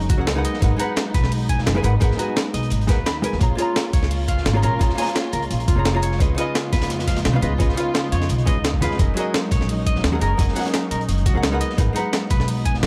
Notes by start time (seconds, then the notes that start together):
Already playing: F#3 G#3 A#3 C#4 D#4 G#4 A#4 F#5
0.01 closed hi-hat
0.09 C#2 F#4, kick, closed hi-hat
0.18 F#3 C#4 G#4 A#4 F#5
0.27 snare, closed hi-hat
0.35 G#3 D#4 A#4 B4 F#5
0.44 F#3 B3 D#5, closed hi-hat
0.54 snare
0.61 G#1 G#3 D#4 A#4 B4 F#5, kick, closed hi-hat
0.76 G#3 D#4 F#5 A#5, closed hi-hat
0.81 B4 F#5
0.96 snare, closed hi-hat
1.14 B1 B4, kick, snare, closed hi-hat
1.24 snare
1.32 closed hi-hat, open hi-hat
1.49 G#5, kick, closed hi-hat
1.59 snare
1.66 F#1, snare, closed hi-hat
1.74 G#3 D#4 A#4 B4 G#5
1.83 G#1 G#3 D#4 A#4 B4 F#5, closed hi-hat
2.00 G#1 G#3 D#4 A#4 B4 F#5, kick, closed hi-hat
2.11 snare
2.16 G#3 D#4 F#4 A#5, closed hi-hat
2.21 B4 G#5
2.36 snare, closed hi-hat
2.54 B1 D#5, closed hi-hat
2.63 closed hi-hat
2.70 G#1, closed hi-hat
2.81 closed hi-hat
2.87 D#2 G#3 D#4 A#4 B4 F#5, kick, snare, closed hi-hat
3.06 B5, snare, closed hi-hat
3.22 G#3 D#4 A#4 B4 G#5, closed hi-hat
3.32 D#2, snare
3.40 A#1 G#3 A#3 C#4 F4 G#4 C#5 A#5, kick, closed hi-hat
3.55 A#3 F4 G#4, closed hi-hat
3.60 C#5 A#5
3.76 snare, closed hi-hat
3.93 C#2 C#5, kick, snare, closed hi-hat
4.03 snare
4.11 closed hi-hat, open hi-hat
4.28 F5, kick, closed hi-hat
4.38 snare
4.45 G#1, snare, closed hi-hat
4.53 A#3 F4 G#4 C#5 A#5
4.62 A#1 A#3 F4 G#4 A#4 C#5 A#5, closed hi-hat
4.79 A#1 A#3 F4 G#4 C#5 A#5, kick, closed hi-hat
4.90 snare
4.95 A#3 F4 G#4 G#5, snare, closed hi-hat
5.00 C#5 A#5, snare, closed hi-hat
5.07 snare, closed hi-hat
5.15 snare, closed hi-hat
5.33 C#2 A#4, closed hi-hat
5.42 closed hi-hat
5.51 A#1, closed hi-hat
5.60 closed hi-hat
5.68 F1 F4, kick, closed hi-hat
5.76 A#3 F4 G#4 C#5 A#5
5.85 snare, closed hi-hat
5.93 A#3 F4 G#4 C#5 A#5
6.02 C#5, closed hi-hat
6.12 snare
6.19 C#2 C#3 B3 C#4 D#4 F4 B4 D#5, kick, closed hi-hat
6.35 C#3 C#4 F4 D#5, closed hi-hat
6.39 B4 D#5
6.55 snare, closed hi-hat
6.73 F2 B4, kick, snare, closed hi-hat
6.82 snare, closed hi-hat
6.90 snare, closed hi-hat
6.99 snare, closed hi-hat
7.07 F5, kick, snare, closed hi-hat
7.16 snare, closed hi-hat
7.25 B1, snare, closed hi-hat
7.33 C#3 C#4 F4 B4 F5
7.41 C#2 C#3 C#4 F4 B4 D#5, closed hi-hat
7.58 C#2 C#3 C#4 F4 B4 D#5, kick, closed hi-hat
7.69 snare
7.74 C#3 C#4 F4, closed hi-hat
7.79 B4 F5
7.94 snare, closed hi-hat
8.12 F2 C#5, closed hi-hat
8.22 snare, closed hi-hat
8.29 B1, closed hi-hat
8.38 closed hi-hat
8.46 C#2 C#3 C#4 F4 B4 D#5, kick, closed hi-hat
8.64 snare, closed hi-hat
8.74 kick
8.81 F2 C#3 C#4 F4 B4 F5, snare, closed hi-hat
8.91 snare
8.98 F#1 F#3 C#4 G#4 A#4 D#5, kick, closed hi-hat
9.14 F#3 C#4 F#4 G#4, closed hi-hat
9.19 A#4 D#5
9.34 snare, closed hi-hat
9.51 A#1 C#5, kick, snare, closed hi-hat
9.61 snare
9.69 closed hi-hat, open hi-hat
9.86 D#5, kick, closed hi-hat
9.96 snare
10.04 D#2, snare, closed hi-hat
10.12 F#3 C#4 G#4 A#4 F#5
10.20 F#1 F#3 C#4 G#4 A#4 D#5, closed hi-hat
10.37 F#1 F#3 C#4 G#4 A#4 D#5, kick, closed hi-hat
10.48 snare
10.53 F#3 C#4 G#4 F#5, snare, closed hi-hat
10.58 A#4 F#5, snare, closed hi-hat
10.65 snare, closed hi-hat
10.74 snare, closed hi-hat
10.91 A#1 A#4, closed hi-hat
11.01 closed hi-hat
11.09 F#1, closed hi-hat
11.18 closed hi-hat
11.26 C#2 F#4, kick, closed hi-hat
11.34 F#3 C#4 G#4 A#4 F#5
11.43 snare, closed hi-hat
11.51 G#3 D#4 A#4 B4 F#5
11.60 F#3 B3 D#5, closed hi-hat
11.70 snare
11.77 G#1 G#3 D#4 A#4 B4 F#5, kick, closed hi-hat
11.93 G#3 D#4 F#5 A#5, closed hi-hat
11.98 B4 F#5
12.13 snare, closed hi-hat
12.30 B1 B4, kick, snare, closed hi-hat
12.40 snare
12.48 closed hi-hat, open hi-hat
12.65 G#5, kick, closed hi-hat
12.74 snare
12.83 F#1, snare, closed hi-hat